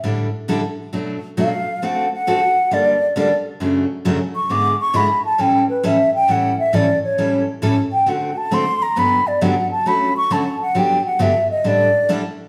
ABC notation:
X:1
M:4/4
L:1/8
Q:"Swing" 1/4=134
K:D
V:1 name="Flute"
z6 =f2 | f f3 d2 d z | z3 c' d' c' b a | g B e g f e d c- |
c z2 g f a =c' _b | b d f a b c' a f | g f e _e d2 z2 |]
V:2 name="Steel-string acoustic guitar"
[A,,D,G,DEA] z [A,,D,G,DEA] z [B,,F,A,DF] z [B,,F,A,DF] z | [D,A,=CFA] z [D,A,CFA] z [G,,D,G,_B,DA] z [G,,D,G,B,DA] z | [F,,C,F,A,DF] z [F,,C,F,A,DF] z [^G,,D,^G,B,E^G] z [G,,D,G,B,EG] z | [A,,E,G,CEA] z [A,,E,G,CEA] z [A,,E,G,CEA] z [A,,E,G,CEA] z |
[A,,E,G,CEA] z [A,,E,G,CEA] z [D,A,=CFA] z [D,A,CFA] z | [G,,D,F,B,DG] z [G,,D,F,B,DG] z [D,F,A,CF] z [D,F,A,CF] z | [G,,D,F,B,DG] z [G,,D,F,B,DG] z [A,,D,G,DEA] z [A,,D,G,DEA] z |]